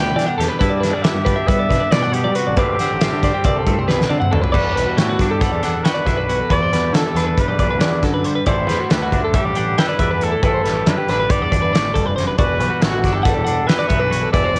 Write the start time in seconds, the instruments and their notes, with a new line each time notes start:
Already playing: picked electric bass D2, clean electric guitar E2 B2 E3 G3 D4 G4 B4, trumpet G5
0.16 picked electric bass E3, clean electric guitar D4 D5, snare, closed hi-hat
0.26 clean electric guitar F#5
0.38 picked electric bass E2, clean electric guitar E2 G4 A4, snare, closed hi-hat
0.48 clean electric guitar B4
0.59 picked electric bass G2, clean electric guitar G2 E4 B4, kick, closed hi-hat
0.70 clean electric guitar D5
0.81 clean electric guitar D4 B4, snare, closed hi-hat
0.91 picked electric bass G3, clean electric guitar D5
1.02 clean electric guitar D3 B3 E5, trumpet G4, snare, closed hi-hat
1.15 picked electric bass G2
1.25 clean electric guitar D4 B4, kick, closed hi-hat
1.36 clean electric guitar E5
1.47 picked electric bass G3, clean electric guitar B3 B4, trumpet E5, kick, closed hi-hat
1.59 clean electric guitar D5
1.69 clean electric guitar G2 D4 B4, picked electric bass B2, kick, snare, closed hi-hat
1.80 clean electric guitar D5
1.91 clean electric guitar A2 D5, picked electric bass B2, trumpet D5, snare, closed hi-hat
2.02 clean electric guitar F#5
2.12 clean electric guitar B2, trumpet G4, closed hi-hat
2.24 picked electric bass G3, clean electric guitar D5
2.35 clean electric guitar C3 B4, trumpet F#4, closed hi-hat
2.46 picked electric bass A1, clean electric guitar D5
2.56 picked electric bass D2, clean electric guitar D3 C4 B4, trumpet G4, kick, closed hi-hat
2.79 clean electric guitar C4 F#5, snare, closed hi-hat
2.90 picked electric bass A1
3.01 clean electric guitar G3 C4 E5, snare, closed hi-hat
3.13 picked electric bass D3
3.23 clean electric guitar C4 D5, kick, snare, closed hi-hat
3.34 clean electric guitar G4
3.44 picked electric bass C2, clean electric guitar C4 D5, kick, closed hi-hat
3.56 clean electric guitar A4
3.66 picked electric bass G2, clean electric guitar A2 C4, kick, closed hi-hat
3.77 picked electric bass C2, clean electric guitar C5
3.87 clean electric guitar B2 B4, snare
4.01 snare
4.09 clean electric guitar C3 D5, picked electric bass D3
4.20 clean electric guitar F#5, mid tom
4.31 picked electric bass D2, clean electric guitar D3 A4, mid tom
4.42 clean electric guitar B4, floor tom
4.52 clean electric guitar E2 E3 G3 D4 F#4 D5, picked electric bass E2, trumpet B4, kick, crash
4.74 picked electric bass B1, clean electric guitar G3 B4, closed hi-hat
4.86 clean electric guitar F#4
4.96 picked electric bass A2, clean electric guitar E3 G4, trumpet F#4, snare, closed hi-hat
5.09 clean electric guitar F#4
5.19 picked electric bass G2, clean electric guitar D4, kick, snare, closed hi-hat
5.29 trumpet G4, clean electric guitar A4
5.41 clean electric guitar G3 F#5, trumpet A4, kick, snare, closed hi-hat
5.52 picked electric bass E2, clean electric guitar D5
5.63 picked electric bass E2, clean electric guitar D4 F#5, snare, closed hi-hat
5.84 clean electric guitar F#4 G5, trumpet B4, snare, closed hi-hat
5.94 clean electric guitar D5
6.06 picked electric bass B1, clean electric guitar D4 E5, kick, snare, closed hi-hat
6.18 clean electric guitar B4
6.29 clean electric guitar E2 F#4, closed hi-hat
6.40 clean electric guitar A4
6.50 picked electric bass E2, clean electric guitar E2 F#4 B4, trumpet D5, kick, closed hi-hat
6.63 clean electric guitar C5
6.73 picked electric bass E2, clean electric guitar G3 B4, snare, closed hi-hat
6.93 picked electric bass D3, clean electric guitar E3 A4, trumpet A4, snare, closed hi-hat
7.07 clean electric guitar G4
7.15 picked electric bass E2, clean electric guitar D4 B4, snare, closed hi-hat
7.27 clean electric guitar B4
7.38 clean electric guitar G3, trumpet B4, kick, closed hi-hat
7.48 picked electric bass B1, clean electric guitar D5
7.59 picked electric bass B1, clean electric guitar D4 D5, kick, closed hi-hat
7.71 clean electric guitar B4
7.79 picked electric bass E2, clean electric guitar E2 D5, snare, closed hi-hat
8.03 clean electric guitar F#2 A4, picked electric bass D3, kick, snare, closed hi-hat
8.14 clean electric guitar B4
8.24 clean electric guitar G2 C5, closed hi-hat
8.35 clean electric guitar B4
8.46 picked electric bass A1, clean electric guitar A2 E4 D5, trumpet C5, kick, closed hi-hat
8.68 picked electric bass E2, clean electric guitar G3 B4, snare, closed hi-hat
8.80 clean electric guitar F#4
8.89 picked electric bass D2, clean electric guitar D3 G4, trumpet B4, snare, closed hi-hat
9.02 clean electric guitar F#4
9.12 picked electric bass D2, clean electric guitar D4, kick, closed hi-hat
9.23 trumpet A4, clean electric guitar A4
9.34 clean electric guitar G3 E5, trumpet G4, kick, closed hi-hat
9.44 picked electric bass A1, clean electric guitar D5
9.55 picked electric bass A1, clean electric guitar D4 F#5, closed hi-hat
9.78 clean electric guitar E4 G5, trumpet B4, snare, closed hi-hat
9.89 clean electric guitar D5
9.99 picked electric bass E2, clean electric guitar D4 E5, kick, closed hi-hat
10.11 clean electric guitar B4
10.21 clean electric guitar A2 E4, trumpet A4, closed hi-hat
10.32 clean electric guitar A4
10.43 picked electric bass A1, clean electric guitar A2 E4 B4, trumpet A4, kick, closed hi-hat
10.54 clean electric guitar C5
10.64 picked electric bass A1, clean electric guitar G3 B4, snare, closed hi-hat
10.87 picked electric bass F#2, clean electric guitar D3 A4, trumpet B4, snare, closed hi-hat
10.98 clean electric guitar G4
11.09 picked electric bass A1, clean electric guitar D4 B4, snare, closed hi-hat
11.20 clean electric guitar B4
11.30 clean electric guitar G3, trumpet D5, kick, closed hi-hat
11.42 picked electric bass E2, clean electric guitar D5
11.52 picked electric bass E2, clean electric guitar D4 D5, kick, closed hi-hat
11.62 clean electric guitar B4
11.73 picked electric bass A1, clean electric guitar A2 D5, snare, closed hi-hat
11.94 picked electric bass F1, clean electric guitar G2 A4, kick, closed hi-hat
12.06 clean electric guitar B4
12.16 clean electric guitar F#2 C5, snare, closed hi-hat
12.28 clean electric guitar B4
12.38 picked electric bass E1, clean electric guitar E2 F#4 D5, trumpet B4, kick, closed hi-hat
12.59 picked electric bass B1, clean electric guitar G3 B4, closed hi-hat
12.70 clean electric guitar F#4
12.81 picked electric bass A1, clean electric guitar E3 G4, trumpet F#4, snare, closed hi-hat
12.92 clean electric guitar F#4
13.04 picked electric bass G1, clean electric guitar D4, kick, snare, closed hi-hat
13.13 trumpet G4, clean electric guitar A4
13.23 clean electric guitar G3 F#5, trumpet A4, kick, snare, closed hi-hat
13.34 picked electric bass E1, clean electric guitar D5
13.45 picked electric bass E1, clean electric guitar D4 F#5, closed hi-hat
13.67 clean electric guitar E4 G5, trumpet B4, snare, closed hi-hat
13.78 clean electric guitar F#4 D5
13.89 picked electric bass B1, clean electric guitar B3 E5, kick, closed hi-hat
14.00 clean electric guitar D4 B4
14.10 clean electric guitar E2 F#4, closed hi-hat
14.22 clean electric guitar A4
14.32 picked electric bass E1, clean electric guitar E2 E4 B4, trumpet D5, kick, closed hi-hat
14.44 clean electric guitar F#4 C5
14.54 picked electric bass E1, clean electric guitar G3 B4, closed hi-hat